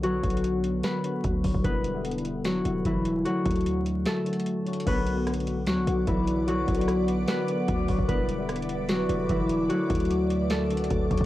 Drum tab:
CC |------------------------------------------------------------------------------------------------|------------------------------------------------------------------------------------------------|------------------------------------------------------------------------------------------------|x-----------------------------------------------------------------------------------------------|
HH |x-----------x---x---x---x-----------x-----------x-----------x-----------x-----------o-----------|x-----------x-----------x---x---x---x-----------x-----------x-----------x-----------x-----------|x-----------x--x--x--x--x-----------x-----------x-----------x---x---x---x-----------x---x---x---|x-----------x-----------x---x---x---x-----------x-----------x-----------x-----------x-----------|
SD |------------------------------------------------o-----------------------------------------------|------------------------------------------------o-----------------------------------------------|------------------------------------------------o-----------------------------------------------|------------------------r-----------------------o-----------------------------------------------|
BD |------------o-----------------------------------------------------------o-----------o-----o-----|o-----------------------------------------------------------------------o-----------------------|------------o-----------------------------------------------------------------------------------|o-----------------------------------------------------------------------o-----------------------|

CC |------------------------------------------------------------------------------------------------|------------------------------------------------------------------------------------------------|------------------------------------------------------------------------------------------------|
HH |x-----------x---x---x---x-----------x-----------x-----------x-----------x-----------o-----------|x-----------x-----------x---x---x---x-----------x-----------x-----------x-----------x-----------|x-----------x--x--x--x--x-----------x-----------x-----------x---x---x---x-----------x---x-------|
SD |------------------------r-----------------------o-----------------------------------------------|------------------------r-----------------------o-----------------------------------------------|------------------------------------------------o-----------------------------------------------|
BD |------------o-----------------------------------------------------------o-----------o-----o-----|o-----------------------------------------------------------------------o-----------------------|------------o-----------------------------------------------------------o-----------o-----o-----|